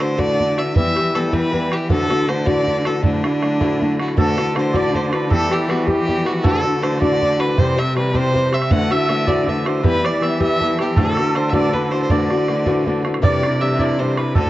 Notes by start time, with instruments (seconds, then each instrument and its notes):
Already playing: cello D3
0.00 steel-string acoustic guitar E3 A3 D4 F#4, fiddle C5, bodhran
0.18 steel-string acoustic guitar D2 A2 E3 A3 D4 F#4, fiddle D5, bodhran
0.38 steel-string acoustic guitar E3 A3 D4 F#4, bodhran
0.57 steel-string acoustic guitar E3 A3 D4 F#4, fiddle E5, bodhran
0.75 steel-string acoustic guitar E3 G3 B3 G4, cello E3, fiddle E5, bodhran
0.96 steel-string acoustic guitar G3 B3 G4, bodhran
1.14 steel-string acoustic guitar E3 G3 B3 G4, fiddle A4, bodhran
1.32 steel-string acoustic guitar E3 G3 B3 G4, fiddle B4, bodhran
1.52 steel-string acoustic guitar E3 G3 B3 G4, bodhran
1.71 steel-string acoustic guitar G3 B3 G4, fiddle G4, bodhran
1.89 steel-string acoustic guitar D2 A2 E3 A3 D4 F#4, cello D3, fiddle A4, bodhran
2.10 steel-string acoustic guitar E3 A3 D4 F#4, bodhran
2.28 steel-string acoustic guitar E3 A3 D4 F#4, fiddle C5, bodhran
2.46 steel-string acoustic guitar D2 A2 E3 A3 D4 F#4, fiddle D5, bodhran
2.66 steel-string acoustic guitar E3 A3 D4 F#4, bodhran
2.84 steel-string acoustic guitar E3 A3 D4 F#4, fiddle A4, bodhran
3.02 steel-string acoustic guitar D2 A2 F#3 A3 D4 E4, cello D3, fiddle D4, bodhran
3.23 steel-string acoustic guitar F#3 A3 D4 E4, bodhran
3.42 steel-string acoustic guitar F#3 A3 D4 E4, bodhran
3.60 steel-string acoustic guitar D2 A2 F#3 A3 D4 E4, bodhran
3.81 steel-string acoustic guitar F#3 A3 D4 E4, bodhran
3.99 steel-string acoustic guitar F#3 A3 D4 E4, hammered dulcimer F#4, fiddle F#4, bodhran
4.08 bodhran
4.16 steel-string acoustic guitar D2 A2 E3 A3 D4 F#4, cello D3, hammered dulcimer A4, fiddle A4, bodhran
4.37 steel-string acoustic guitar E3 A3 D4 F#4, hammered dulcimer B4, bodhran
4.55 steel-string acoustic guitar E3 A3 D4 F#4, hammered dulcimer C5, fiddle C5, bodhran
4.73 steel-string acoustic guitar D2 A2 E3 A3 D4 F#4, hammered dulcimer D5, fiddle D5, bodhran
4.94 steel-string acoustic guitar E3 A3 D4 F#4, hammered dulcimer C5, fiddle C5, bodhran
5.12 steel-string acoustic guitar E3 A3 D4 F#4, fiddle B4, bodhran
5.30 steel-string acoustic guitar E3 G3 B3 G4, cello E3, hammered dulcimer A4, fiddle A4, bodhran
5.50 steel-string acoustic guitar G3 B3 G4, hammered dulcimer G4, fiddle G4, bodhran
5.68 steel-string acoustic guitar E3 G3 B3 G4, hammered dulcimer F#4, fiddle F#4, bodhran
5.87 steel-string acoustic guitar E3 G3 B3 G4, hammered dulcimer G4, fiddle G4, bodhran
6.08 steel-string acoustic guitar E3 G3 B3 G4, bodhran
6.25 steel-string acoustic guitar G3 B3 G4, hammered dulcimer F#4, fiddle F#4, bodhran
6.43 steel-string acoustic guitar D2 A2 E3 A3 D4 F#4, cello D3, hammered dulcimer A4, fiddle A4, bodhran
6.64 steel-string acoustic guitar E3 A3 D4 F#4
6.81 steel-string acoustic guitar E3 A3 D4 F#4, hammered dulcimer C5, fiddle C5, bodhran
7.00 steel-string acoustic guitar D2 A2 E3 A3 D4 F#4, fiddle D5, hammered dulcimer D5, bodhran
7.21 steel-string acoustic guitar E3 A3 D4 F#4, bodhran
7.39 steel-string acoustic guitar E3 A3 D4 F#4, hammered dulcimer B4, fiddle B4, bodhran
7.57 steel-string acoustic guitar C3 E3 G3 C4 G4, cello C3, hammered dulcimer C5, fiddle C5, bodhran
7.77 steel-string acoustic guitar G3 C4 G4, fiddle E5, bodhran
7.95 steel-string acoustic guitar E3 G3 C4 G4, hammered dulcimer B4, fiddle B4, bodhran
8.14 steel-string acoustic guitar C3 E3 G3 C4 G4, hammered dulcimer C5, fiddle C5, bodhran
8.34 steel-string acoustic guitar E3 G3 C4 G4, bodhran
8.51 steel-string acoustic guitar G3 C4 G4, hammered dulcimer E5, fiddle E5, bodhran
8.62 bodhran
8.70 steel-string acoustic guitar D2 A2 E3 A3 D4 F#4, cello D3, fiddle F#5, hammered dulcimer F#5, bodhran
8.90 steel-string acoustic guitar E3 A3 D4 F#4, hammered dulcimer E5, fiddle E5, bodhran
9.03 hammered dulcimer E5
9.08 steel-string acoustic guitar E3 A3 D4 F#4, bodhran
9.14 hammered dulcimer E5
9.26 steel-string acoustic guitar D2 A2 E3 A3 D4 F#4, hammered dulcimer D5, fiddle D5, bodhran
9.46 steel-string acoustic guitar E3 A3 D4 F#4, hammered dulcimer E5, fiddle E5, bodhran
9.65 steel-string acoustic guitar E3 A3 D4 F#4, hammered dulcimer C5, fiddle C5, bodhran
9.83 steel-string acoustic guitar E3 G3 B3 G4, cello E3, hammered dulcimer B4, fiddle B4, bodhran
10.03 steel-string acoustic guitar G3 B3 G4, hammered dulcimer D5, fiddle D5, bodhran
10.21 steel-string acoustic guitar E3 G3 B3 G4, hammered dulcimer E5, fiddle E5, bodhran
10.40 steel-string acoustic guitar E3 G3 B3 G4, hammered dulcimer E5, fiddle E5, bodhran
10.60 steel-string acoustic guitar E3 G3 B3 G4, hammered dulcimer A4, bodhran
10.78 steel-string acoustic guitar G3 B3 G4, hammered dulcimer G4, fiddle G4, bodhran
10.96 steel-string acoustic guitar D2 A2 E3 A3 D4 F#4, cello D3, hammered dulcimer A4, fiddle A4, bodhran
11.10 hammered dulcimer A4
11.17 steel-string acoustic guitar E3 A3 D4 F#4, bodhran
11.23 hammered dulcimer A4
11.35 steel-string acoustic guitar E3 A3 D4 F#4, hammered dulcimer C5, fiddle C5, bodhran
11.50 steel-string acoustic guitar A3 D4 F#4, fiddle E5, bodhran
11.54 steel-string acoustic guitar D2 A2 E3, fiddle D5, hammered dulcimer D5
11.73 steel-string acoustic guitar E3 A3 D4 F#4, fiddle B4, hammered dulcimer B4, bodhran
11.91 steel-string acoustic guitar E3 A3 D4 F#4, fiddle C5, hammered dulcimer C5, bodhran
12.02 fiddle C5
12.10 steel-string acoustic guitar D2 A2 E3 A3 D4 F#4, cello D3, fiddle D5, hammered dulcimer D5, bodhran
12.30 steel-string acoustic guitar E3 A3 D4 F#4, bodhran
12.48 steel-string acoustic guitar E3 A3 D4 F#4, bodhran
12.66 steel-string acoustic guitar D2 A2 E3 A3 D4 F#4, bodhran
12.86 steel-string acoustic guitar E3 A3 D4 F#4, bodhran
13.04 steel-string acoustic guitar E3 A3 D4 F#4, bodhran
13.14 bodhran
13.22 steel-string acoustic guitar C3 E3 G3 D4 E4, cello C3, fiddle D5, hammered dulcimer D5, bodhran
13.43 steel-string acoustic guitar G3 D4 E4, bodhran
13.60 steel-string acoustic guitar E3 G3 D4 E4, fiddle E5, hammered dulcimer E5
13.73 fiddle E5
13.79 steel-string acoustic guitar C3 E3 G3 D4 E4, hammered dulcimer D5, fiddle D5, bodhran
13.98 steel-string acoustic guitar E3 G3 D4 E4, hammered dulcimer C5, fiddle C5
14.17 steel-string acoustic guitar G3 D4 E4, hammered dulcimer B4, fiddle B4, bodhran
14.35 steel-string acoustic guitar D2 A2 D3 A3 D4 F#4, cello D3, hammered dulcimer A4, fiddle A4, bodhran
14.46 bodhran